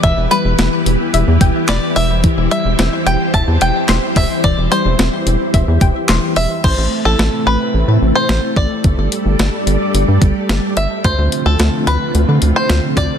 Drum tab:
CC |--------|--------|--------|x-------|
HH |xxxxxxxo|xxxxxxxo|xxxxxxxo|--------|
CP |------x-|------x-|------x-|--------|
SD |--o---o-|--o---o-|--o---o-|--o---o-|
BD |o----o--|o---o--o|o---oo--|o------o|

CC |--------|--------|
HH |xxxxxxxx|xxxxxxxx|
CP |--------|--------|
SD |--o---o-|--o---o-|
BD |o----o--|o------o|